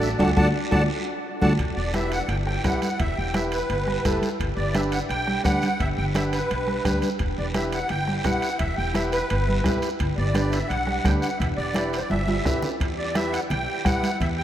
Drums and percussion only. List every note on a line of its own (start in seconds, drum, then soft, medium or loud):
0.02 short guiro medium
0.19 bombo low medium
0.19 high conga loud
0.19 high timbale loud
0.19 long guiro loud
0.37 bombo low loud
0.37 high conga medium
0.37 high timbale medium
0.37 long guiro loud
0.71 bombo low loud
0.71 high conga medium
0.71 high timbale loud
0.71 long guiro medium
1.42 bombo low medium
1.42 high conga loud
1.42 high timbale medium
1.42 long guiro loud
1.59 bombo low medium
1.59 high timbale medium
1.59 long guiro medium
1.94 bombo rim medium
1.94 high conga medium
1.94 high timbale medium
1.94 short guiro medium
2.12 high timbale medium
2.12 short guiro medium
2.29 high conga soft
2.29 high timbale medium
2.29 long guiro medium
2.47 bombo rim medium
2.64 bombo low medium
2.64 bombo rim medium
2.64 high conga medium
2.64 high timbale medium
2.64 low timbale medium
2.64 short guiro medium
2.82 high conga medium
2.82 high timbale medium
2.82 short guiro medium
3.00 bombo low medium
3.00 high timbale medium
3.00 long guiro medium
3.34 bombo rim medium
3.34 high conga medium
3.34 high timbale medium
3.34 short guiro medium
3.52 high timbale medium
3.52 short guiro medium
3.70 high conga soft
3.70 high timbale medium
3.70 long guiro medium
3.87 bombo rim medium
3.87 high conga medium
4.05 bombo low medium
4.05 bombo rim medium
4.05 high conga medium
4.05 high timbale medium
4.05 short guiro medium
4.22 high conga medium
4.22 high timbale medium
4.22 short guiro medium
4.40 bombo low medium
4.40 high timbale medium
4.40 long guiro medium
4.75 bombo rim medium
4.75 high conga medium
4.75 high timbale medium
4.75 short guiro medium
4.92 high timbale medium
4.92 short guiro medium
5.09 high conga soft
5.09 high timbale medium
5.09 long guiro medium
5.27 bombo rim medium
5.27 high conga medium
5.44 bombo low medium
5.44 bombo rim medium
5.44 high conga medium
5.44 high timbale medium
5.44 low timbale medium
5.44 short guiro medium
5.62 high conga medium
5.62 high timbale medium
5.62 short guiro medium
5.80 bombo low medium
5.80 high conga soft
5.80 high timbale medium
5.80 long guiro medium
6.15 bombo rim medium
6.15 high conga medium
6.15 high timbale medium
6.15 short guiro medium
6.33 high timbale medium
6.33 short guiro medium
6.50 high conga soft
6.50 high timbale medium
6.50 long guiro medium
6.67 bombo rim medium
6.67 high conga medium
6.85 bombo low medium
6.85 bombo rim medium
6.85 high conga medium
6.85 high timbale medium
6.85 short guiro medium
7.02 high conga medium
7.02 high timbale medium
7.02 short guiro medium
7.19 bombo low medium
7.19 high timbale medium
7.19 long guiro medium
7.54 bombo rim medium
7.54 high conga medium
7.54 high timbale medium
7.54 short guiro medium
7.72 high timbale medium
7.72 short guiro medium
7.89 high conga soft
7.89 high timbale medium
7.89 long guiro medium
8.08 bombo rim medium
8.08 high conga medium
8.24 bombo low medium
8.24 bombo rim medium
8.24 high conga medium
8.24 high timbale medium
8.24 low timbale medium
8.24 short guiro medium
8.42 high timbale medium
8.42 short guiro medium
8.59 bombo low medium
8.59 high conga soft
8.59 high timbale medium
8.59 long guiro medium
8.95 bombo rim medium
8.95 high conga medium
8.95 high timbale medium
8.95 short guiro medium
9.12 high timbale medium
9.12 short guiro medium
9.30 high conga soft
9.30 high timbale medium
9.30 long guiro medium
9.48 high conga medium
9.64 bombo low medium
9.64 bombo rim medium
9.64 high conga medium
9.64 high timbale medium
9.64 low timbale medium
9.64 short guiro medium
9.82 high timbale medium
9.82 short guiro medium
9.99 bombo low medium
9.99 high conga soft
9.99 high timbale medium
9.99 long guiro medium
10.35 bombo rim medium
10.35 high conga medium
10.35 high timbale medium
10.35 short guiro medium
10.52 high timbale medium
10.52 short guiro medium
10.70 high conga soft
10.70 high timbale medium
10.70 long guiro medium
10.87 bombo rim medium
10.87 high conga medium
11.04 bombo low medium
11.04 bombo rim medium
11.04 high conga medium
11.04 high timbale medium
11.04 low timbale medium
11.04 short guiro medium
11.22 high timbale medium
11.22 short guiro medium
11.39 bombo low medium
11.39 high conga soft
11.39 high timbale medium
11.39 long guiro medium
11.74 bombo rim medium
11.74 high conga medium
11.74 high timbale medium
11.74 short guiro medium
11.93 high timbale medium
11.93 short guiro medium
12.10 high conga medium
12.10 high timbale medium
12.10 long guiro medium
12.27 high conga medium
12.27 high timbale medium
12.45 bombo low medium
12.45 bombo rim medium
12.45 low timbale medium
12.45 short guiro medium
12.62 low conga medium
12.62 low timbale medium
12.62 short guiro medium
12.80 bombo low medium
12.80 high conga soft
12.80 high timbale medium
12.80 long guiro medium
13.15 bombo rim medium
13.15 high conga medium
13.15 high timbale medium
13.15 short guiro medium
13.34 high timbale medium
13.34 short guiro medium
13.50 high conga soft
13.50 low conga medium
13.50 high timbale medium
13.50 long guiro medium
13.85 bombo low medium
13.85 bombo rim medium
13.85 high conga medium
13.85 high timbale medium
13.85 short guiro medium
14.03 high conga medium
14.03 high timbale medium
14.03 short guiro medium
14.21 bombo low medium
14.21 high timbale medium
14.21 long guiro medium